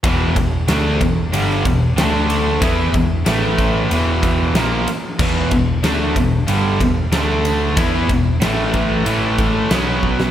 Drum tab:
CC |----------------|----------------|x---------------|----------------|
RD |x-x-x-x-x-x-x-x-|x-x-x-x-x-x-x-x-|--x-x-x-x-x-x-x-|x-x-x-x-x-x-x---|
SD |----o----o--o---|----o-------o-o-|----o-------o---|----o-------o--o|
BD |o-o---o---o-----|o-o---o---o-----|o-o---o---o-----|o-o---o---o---o-|